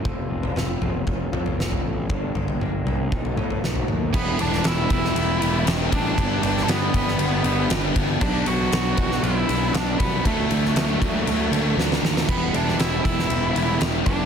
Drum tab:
CC |----------------|----------------|x---------------|----------------|
RD |----------------|----------------|--x-x-x-x-x-x-x-|x-x-x-x-x-x-x-x-|
SD |----o-------o---|------------o---|---oo--o----o---|---oo--o----o---|
T2 |----o-----o-----|----o-----o---o-|----------------|----------------|
FT |o--o--o-o-oo-o--|o-oo--o-oooo-o--|----------------|----------------|
BD |o-------o-------|o-------o-------|o-----o-------o-|o-----o-------o-|

CC |x---------------|----------------|x---------------|
RD |--x-x-x-x-x-x-x-|x-x-x-x-x-x-----|--x-x-x-x-x-x-x-|
SD |----o--o----o---|---oo-------oooo|---oo--o----o---|
T2 |----------------|----------------|----------------|
FT |----------------|----------------|----------------|
BD |o-----o-------o-|o-----o---------|o-----o-------o-|